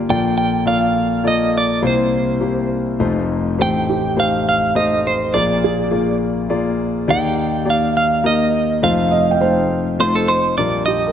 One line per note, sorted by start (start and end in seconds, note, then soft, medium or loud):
0.00 0.09 A#3 medium
0.00 0.09 F4 medium
0.00 0.09 D5 medium
0.00 0.11 F5 medium
0.00 0.10 A#5 medium
0.09 1.79 A#1 medium
0.09 1.79 A#2 medium
0.09 0.55 A#3 medium
0.09 0.56 F4 medium
0.09 0.55 A4 medium
0.09 0.56 D5 medium
0.09 0.36 G5 loud
0.38 0.67 G5 medium
0.66 1.05 A#3 medium
0.66 1.05 F4 medium
0.66 1.05 A4 medium
0.66 1.06 D5 medium
0.66 1.27 F5 loud
1.23 1.81 A#3 medium
1.23 1.83 F4 medium
1.23 1.83 A4 medium
1.23 1.83 D5 medium
1.28 1.56 D#5 medium
1.57 1.86 D5 medium
1.82 2.95 C2 medium
1.82 2.95 C3 medium
1.82 2.29 A#3 medium
1.82 2.29 E4 medium
1.82 2.29 G4 medium
1.82 2.29 C5 medium
1.87 2.68 C5 medium
2.41 2.80 A#3 medium
2.41 2.80 E4 medium
2.41 2.80 G4 medium
2.41 2.80 C5 medium
2.99 3.54 F1 medium
2.99 3.54 F2 medium
2.99 3.57 A3 medium
2.99 3.57 D#4 medium
2.99 3.58 F4 medium
2.99 3.58 C5 medium
3.58 5.30 A1 medium
3.58 5.30 A2 medium
3.58 4.05 A3 medium
3.58 4.05 D#4 medium
3.58 4.05 G4 medium
3.58 4.05 C5 medium
3.58 4.19 G5 loud
3.89 5.59 G4 soft
4.16 4.56 A3 medium
4.16 4.56 D#4 medium
4.16 4.56 G4 medium
4.16 4.56 C5 medium
4.16 4.47 F5 medium
4.49 4.76 F5 medium
4.75 5.33 A3 medium
4.75 5.33 D#4 medium
4.75 5.33 G4 medium
4.75 5.33 C5 medium
4.75 5.06 D#5 medium
5.07 5.36 C5 medium
5.34 7.05 A#1 medium
5.34 7.05 A#2 medium
5.34 5.80 A#3 medium
5.34 5.80 F4 medium
5.34 5.80 G#4 medium
5.34 6.17 D5 medium
5.34 5.80 D5 medium
5.64 7.34 G#4 soft
5.91 6.31 A#3 medium
5.91 6.31 F4 medium
5.91 6.31 G#4 medium
5.91 6.31 D5 medium
6.49 7.06 A#3 medium
6.49 7.08 F4 medium
6.49 7.08 G#4 medium
6.49 7.07 D5 medium
7.08 8.78 D#2 medium
7.08 8.78 D#3 medium
7.08 7.54 A#3 medium
7.08 7.54 D#4 medium
7.08 7.55 G4 medium
7.08 7.55 D5 medium
7.08 7.69 G5 loud
7.65 8.05 A#3 medium
7.65 8.05 D#4 medium
7.65 8.05 G4 medium
7.65 8.05 D5 medium
7.70 7.96 F5 medium
7.97 8.23 F5 medium
8.23 8.82 A#3 medium
8.23 8.81 D#4 medium
8.23 8.82 G4 medium
8.23 8.82 A#4 medium
8.23 8.79 D#5 medium
8.82 10.54 F1 medium
8.82 10.54 F2 medium
8.82 9.29 A3 medium
8.82 9.29 D#4 medium
8.82 9.29 F4 medium
8.82 9.29 C5 medium
8.82 9.96 F5 medium
9.11 10.83 D#5 medium
9.31 11.00 G5 soft
9.40 9.80 A3 medium
9.40 9.80 D#4 medium
9.40 9.80 F4 medium
9.40 10.83 C5 medium
9.40 9.80 C5 medium
9.99 10.58 A3 medium
9.99 10.58 D#4 medium
9.99 10.57 F4 medium
9.99 10.58 C5 medium
9.99 10.15 C5 medium
10.15 10.30 A4 medium
10.28 10.57 C5 medium
10.58 11.12 A#1 medium
10.58 11.12 A#2 medium
10.58 11.05 G3 medium
10.58 11.05 D4 medium
10.58 11.05 F4 medium
10.58 11.05 A#4 medium
10.58 10.85 D5 medium
10.86 11.12 G4 medium
10.86 11.12 D#5 medium
11.07 11.12 A#4 soft